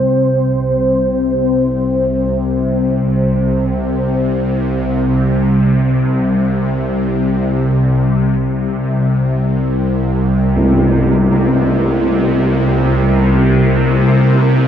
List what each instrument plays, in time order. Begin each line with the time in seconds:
Already playing: synth drone C2 C3, analog synth pad C3 G3 C4 C5
9.50 analog synth pad A#4
10.56 tam-tam
13.48 analog synth pad A#3